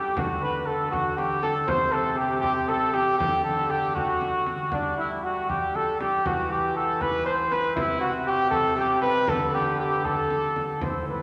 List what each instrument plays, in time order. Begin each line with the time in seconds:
Already playing: trombone G3, cornet G4, cor anglais G4
0.16 trombone D3, cornet F#4, cor anglais F#4, frame drum
0.42 cornet B4, cor anglais B4
0.66 cornet A4, cor anglais A4
0.91 cornet F#4, cor anglais F#4, frame drum
1.17 cornet G4, cor anglais G4, frame drum
1.43 cornet A4, cor anglais A4, frame drum
1.67 trombone C3, cornet C5, cor anglais C5, frame drum
1.92 cornet A4, cor anglais A4
2.17 cornet G4, cor anglais G4
2.41 cornet G4, cor anglais G4, frame drum
2.68 cornet A4, cor anglais A4, frame drum
2.93 cornet G4, cor anglais G4, frame drum
3.19 trombone D3, cornet G4, cor anglais G4, frame drum
3.44 cornet A4, cor anglais A4
3.70 cor anglais G4, cornet G4
3.95 cor anglais F#4, cornet F#4, frame drum
4.21 frame drum
4.47 frame drum
4.72 trombone G3, cor anglais D4, cornet D4, frame drum
4.97 cornet E4, cor anglais E4
5.24 cornet F#4, cor anglais F#4
5.49 cor anglais G4, cornet G4, frame drum
5.75 cor anglais A4, cornet A4, frame drum
6.00 cor anglais G4, cornet G4, frame drum
6.26 trombone E3, cornet F#4, cor anglais F#4, frame drum
6.51 cornet G4, cor anglais G4
6.76 cornet A4, cor anglais A4
7.01 cor anglais B4, cornet B4, frame drum
7.26 cornet C5, cor anglais C5, frame drum
7.51 cornet B4, cor anglais B4, frame drum
7.76 trombone C3, cornet E4, cor anglais E4, frame drum
8.00 cornet F#4
8.04 cor anglais F#4
8.27 cornet G4, cor anglais G4
8.50 cornet A4, frame drum
8.55 cor anglais A4
8.76 cornet G4, frame drum
8.80 cor anglais G4
9.02 cornet B4, cor anglais B4, frame drum
9.27 trombone D3, cornet A4, cor anglais A4, frame drum
9.54 cornet G4, cor anglais G4
9.79 cornet G4, cor anglais G4
10.05 cornet A4, cor anglais A4, frame drum
10.30 frame drum
10.56 frame drum
10.81 trombone A2, cor anglais E4, cornet C5, frame drum
11.08 cornet B4